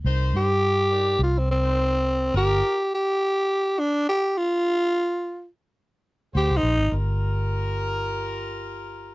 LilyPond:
<<
  \new Staff \with { instrumentName = "Horn section" } { \time 4/4 \key g \minor \tempo 4 = 105 <ees' bes' c''>8. r8. <ees' bes' d''>8 r8. <ees' bes' c''>8. r8 | <f' g' bes'>8. r2. r16 | r2. <ges' aes' c''>8. r16 | <f' g' bes'>1 | }
  \new Staff \with { instrumentName = "Tenor saxophone" } { \time 4/4 \key g \minor r8 g'4. f'16 c'16 c'4. | g'4 g'4. d'8 g'8 f'8~ | f'4. r4. \tuplet 3/2 { g'8 ees'4 } | r1 | }
  \new Staff \with { instrumentName = "Fingered electric bass" } { \clef bass \time 4/4 \key g \minor c,8 g,4. c,2 | g,,8 r2. r8 | r2. d,16 c,16 bes,,16 aes,,16 | g,,1 | }
>>